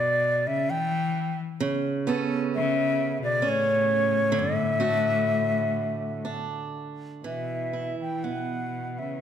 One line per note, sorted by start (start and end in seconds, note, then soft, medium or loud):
0.00 0.49 B2 medium
0.00 0.49 D5 medium
0.47 0.71 C#3 medium
0.47 0.72 E5 medium
0.70 1.38 E3 medium
0.70 1.38 G5 medium
1.60 4.31 C#3 medium
2.07 4.44 B3 medium
2.07 3.41 C#4 medium
2.07 4.80 A4 medium
2.56 3.19 C#3 medium
2.56 3.18 E5 loud
3.22 3.47 B2 medium
3.22 3.50 D5 medium
3.42 4.40 A2 medium
3.42 4.44 C#4 medium
3.49 4.41 C#5 loud
4.32 7.25 D3 medium
4.39 6.29 A2 medium
4.39 6.29 E5 loud
4.80 7.35 A3 medium
4.80 6.24 D4 medium
4.80 7.35 F#4 medium
6.25 7.35 D4 medium
7.24 7.96 B2 medium
7.24 9.21 E3 medium
7.24 7.96 E5 medium
7.73 9.21 E4 soft
8.00 8.28 E3 medium
8.00 8.25 G5 medium
8.24 9.01 B2 medium
8.24 9.21 B3 soft
8.24 9.00 F#5 medium
8.98 9.21 C#3 medium
8.98 9.21 E5 medium